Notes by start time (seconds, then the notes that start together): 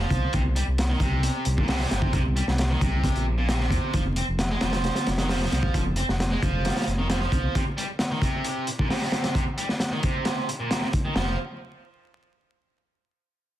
0.00 F3
0.10 C2, kick, closed hi-hat, high conga
0.33 C2 C3, kick, closed hi-hat
0.45 high conga
0.56 G3, closed hi-hat
0.67 C2
0.78 snare, closed hi-hat
0.90 D#3, high conga
1.00 C2 C3, kick, closed hi-hat, low conga
1.23 closed hi-hat, high conga
1.45 C2, closed hi-hat
1.57 A#2, kick, high conga
1.68 C3, snare, open hi-hat
1.80 C3, snare
1.91 G1, snare, closed hi-hat, high conga
2.02 kick
2.13 C2 C3, kick, closed hi-hat
2.25 high conga
2.36 G3, closed hi-hat
2.48 C2, snare
2.58 snare, closed hi-hat
2.70 D#3, high conga
2.81 C2 C3, kick, closed hi-hat, low conga
3.04 kick, closed hi-hat, high conga
3.15 A#1, closed hi-hat
3.38 A#2, high conga
3.49 C3, snare, closed hi-hat
3.60 C3, snare
3.71 F2, kick, closed hi-hat, high conga
3.94 F1 F3, kick, closed hi-hat
4.06 high conga
4.16 C4, closed hi-hat
4.28 F1
4.39 snare, closed hi-hat
4.50 G#3, high conga
4.61 F1 F3, snare, closed hi-hat, low conga
4.73 snare, closed hi-hat
4.84 snare, closed hi-hat, high conga
4.95 snare, closed hi-hat
5.06 F1, snare, closed hi-hat
5.18 D#3, snare, closed hi-hat, high conga
5.29 F3, snare, open hi-hat
5.41 F3, snare
5.52 C2, snare, closed hi-hat, high conga
5.63 kick
5.74 F1 F3, kick, closed hi-hat
5.86 high conga
5.96 C4, closed hi-hat
6.09 F1, snare
6.20 snare, closed hi-hat
6.31 G#3, high conga
6.42 F1 F3, kick, closed hi-hat, low conga
6.65 snare, closed hi-hat, high conga
6.70 snare, closed hi-hat
6.76 snare, closed hi-hat
6.82 snare, closed hi-hat
6.87 F1, closed hi-hat
6.98 D#3, high conga
7.09 F3, snare, closed hi-hat
7.21 F3, snare
7.32 C2, kick, closed hi-hat, high conga
7.55 C3, kick, closed hi-hat
7.77 G3, closed hi-hat
7.99 snare, closed hi-hat
8.11 D#3
8.22 C3, kick, closed hi-hat
8.44 closed hi-hat
8.67 closed hi-hat
8.79 A#2, kick
8.90 C3, snare, open hi-hat
9.01 C3, snare
9.12 snare, closed hi-hat
9.24 snare, closed hi-hat
9.35 C3, kick, closed hi-hat
9.58 G3, closed hi-hat
9.69 snare
9.80 snare, closed hi-hat
9.92 D#3
10.03 C3, kick, closed hi-hat
10.25 snare, closed hi-hat
10.49 closed hi-hat
10.60 A#2
10.71 A#2, snare, closed hi-hat
10.81 C3, snare
10.93 kick, closed hi-hat
11.05 D#3
11.16 F1 F3, snare